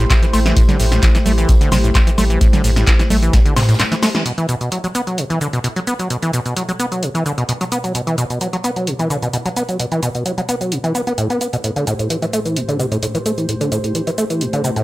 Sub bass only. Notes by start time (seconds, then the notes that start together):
0.33 A1
0.80 A1
1.26 A1
1.72 A1
2.18 A1
2.64 A1
3.10 A1
3.56 A2